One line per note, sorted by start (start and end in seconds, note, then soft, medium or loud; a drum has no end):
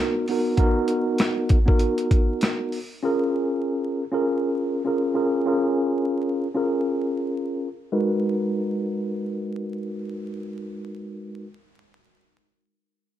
0.00 0.24 B3 medium
0.00 0.25 D#4 medium
0.00 0.25 F#4 medium
0.00 0.26 A#4 medium
0.28 0.55 B3 medium
0.28 0.56 D#4 medium
0.28 0.57 F#4 medium
0.28 0.58 A#4 medium
0.28 open hi-hat soft
0.57 1.57 B3 medium
0.57 1.57 D#4 medium
0.57 1.58 F#4 medium
0.57 1.58 A#4 loud
0.57 kick loud
0.57 closed hi-hat medium
0.88 closed hi-hat medium
1.18 cross-stick medium
1.18 snare loud
1.18 closed hi-hat medium
1.49 kick medium
1.49 closed hi-hat medium
1.66 2.78 B3 medium
1.66 2.78 D#4 medium
1.66 2.78 F#4 medium
1.66 2.79 A#4 loud
1.66 kick loud
1.79 closed hi-hat medium
1.98 closed hi-hat medium
2.11 kick medium
2.11 closed hi-hat medium
2.41 cross-stick loud
2.41 snare loud
2.41 closed hi-hat medium
2.72 open hi-hat soft
3.03 4.02 C#4 loud
3.03 4.03 F4 medium
3.03 4.03 G#4 medium
3.03 4.04 A#4 loud
4.12 4.81 C#4 medium
4.12 4.81 F4 medium
4.12 4.82 G#4 medium
4.12 4.82 A#4 loud
4.85 5.13 C#4 medium
4.85 5.14 F4 medium
4.85 5.15 G#4 medium
4.85 5.15 A#4 medium
5.14 5.44 C#4 medium
5.14 5.44 F4 medium
5.14 5.45 G#4 medium
5.14 5.45 A#4 medium
5.46 6.46 C#4 medium
5.46 6.47 F4 medium
5.46 6.47 G#4 medium
5.46 6.47 A#4 medium
6.54 7.67 C#4 medium
6.54 7.67 F4 medium
6.54 7.68 G#4 medium
6.54 7.68 A#4 loud
7.92 11.46 G#3 medium
7.92 11.46 D#4 medium
7.92 11.46 F#4 medium
7.92 11.46 A#4 medium
7.92 11.47 B4 medium